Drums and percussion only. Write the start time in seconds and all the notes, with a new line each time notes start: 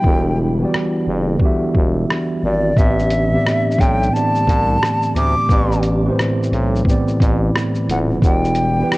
0.04 kick
0.74 cross-stick
1.40 kick
1.75 kick
2.10 cross-stick
2.77 kick, shaker
2.99 shaker
3.10 closed hi-hat, shaker
3.46 cross-stick, shaker
3.71 shaker
3.78 kick, closed hi-hat, shaker
4.03 shaker
4.15 shaker
4.35 shaker
4.47 kick, closed hi-hat, shaker
4.83 cross-stick, shaker
5.02 shaker
5.16 closed hi-hat, shaker
5.49 kick, shaker
5.72 shaker
5.83 closed hi-hat, shaker
6.19 cross-stick, shaker
6.43 shaker
6.53 closed hi-hat, shaker
6.75 shaker
6.85 kick, shaker
7.08 shaker
7.20 kick, closed hi-hat, shaker
7.55 cross-stick, shaker
7.75 shaker
7.89 closed hi-hat, shaker
8.22 kick, shaker
8.44 shaker
8.55 closed hi-hat, shaker
8.92 cross-stick, shaker